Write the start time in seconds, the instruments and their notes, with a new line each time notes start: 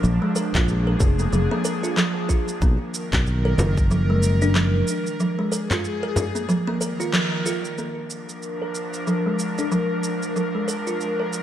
Already playing: analog synth pad F3 D4
0.03 fretless electric bass A#1, kalimba F3, analog synth pad G#4, cabasa
0.22 kalimba G#3
0.36 kalimba A#4, cabasa
0.55 fretless electric bass A#1, kalimba F4, kick, clap, frame drum, cabasa
0.68 cabasa
0.87 kalimba A#4
1.00 fretless electric bass F1, kick, frame drum, cabasa
1.19 kalimba A#3, cabasa
1.33 fretless electric bass F1, kalimba F3, cabasa
1.51 kalimba A#3
1.65 kalimba A#4, cabasa
1.83 kalimba F4, cabasa
1.97 kalimba F3, clap, cabasa
2.29 kalimba F4, kick, cabasa
2.48 cabasa
2.62 fretless electric bass B1, analog synth pad D#3 A#4, kalimba A#3, kick, cabasa
2.94 cabasa
3.13 fretless electric bass B1, kick, clap, frame drum, cabasa
3.27 cabasa
3.45 kalimba A#4
3.58 fretless electric bass F#1, frame drum, cabasa
3.77 kick, cabasa
3.91 kalimba F3, cabasa
4.10 kalimba G#3
4.23 cabasa
4.42 kalimba D4, cabasa
4.55 kalimba F3, clap, cabasa
4.88 cabasa
5.07 cabasa
5.20 kalimba F3, analog synth pad G#4, cabasa
5.39 kalimba G#3
5.52 kalimba A#4, cabasa
5.71 kalimba F4, clap, frame drum, cabasa
5.85 cabasa
6.03 kalimba A#4
6.16 frame drum, cabasa
6.35 kalimba A#3, cabasa
6.48 analog synth pad D#3 A#4, kalimba F3, cabasa
6.67 kalimba A#3
6.81 kalimba A#4, cabasa
7.00 kalimba F4, cabasa
7.13 kalimba F3, clap, cabasa
7.46 kalimba F4, cabasa
7.65 cabasa
7.78 analog synth pad F3 D4 A#4, kalimba A#3, cabasa
8.10 cabasa
8.29 cabasa
8.42 cabasa
8.62 kalimba A#4
8.75 cabasa
8.94 cabasa
9.07 kalimba F3, cabasa
9.26 kalimba G#3
9.39 cabasa
9.58 kalimba D4, cabasa
9.72 kalimba F3, cabasa
10.04 cabasa
10.23 cabasa
10.36 kalimba F3, cabasa
10.55 kalimba G#3
10.68 kalimba A#4, cabasa
10.87 kalimba F4, cabasa
11.01 cabasa
11.19 kalimba A#4
11.33 cabasa